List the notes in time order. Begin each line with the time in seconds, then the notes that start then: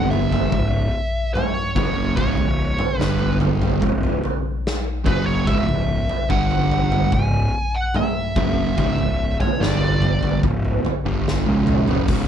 Already playing: G1 G2 D3 G3
0.11 E5, floor tom
0.32 floor tom, mid tom
0.52 C#1 C#2 G#2, kick, floor tom
1.34 C#5, mid tom
1.76 F#1 F#2 C#3 F#3, kick, floor tom
2.16 C#1 C#2 G#2 C#5, kick, floor tom
2.37 C#1 C#2 G#2, floor tom
2.79 floor tom, mid tom
2.99 G1 G2 D3 G3 B4, snare
3.19 floor tom
3.40 floor tom, mid tom
3.62 floor tom, mid tom
3.81 C#1 C#2 G#2, kick, floor tom
4.03 floor tom
4.24 floor tom
4.67 snare
5.04 F#1 F#2 C#3 F#3 B4, kick, floor tom
5.26 C#5
5.46 C#1 C#2 G#2 E5, kick, floor tom
5.67 C#1 C#2 G#2, floor tom
6.09 floor tom
6.30 G1 G2 D3 G3 F#5, kick
6.51 floor tom
6.71 floor tom
6.92 floor tom, mid tom
7.12 C#1 C#2 G#2 G#5, kick, floor tom
7.76 F#5
7.94 E5, mid tom
8.36 F#1 F#2 C#3 F#3, kick, floor tom
8.77 C#1 C#2 G#2 E5, kick, floor tom
8.98 C#1 C#2 G#2, floor tom
9.40 C#5, floor tom, mid tom
9.60 G1 G2 D3 G3 D5, snare
9.81 floor tom
10.02 floor tom, mid tom
10.23 floor tom, mid tom
10.43 C#1 C#2 G#2, kick, floor tom
10.65 floor tom
10.85 floor tom
11.05 G1 G2 D3 G3
11.28 snare
11.46 C#1 C#2 G#2 C#3, high tom
11.67 mid tom
11.88 F#1 F#2 C#3, floor tom
12.08 C#1 C#2 G#2 C#3, kick, open hi-hat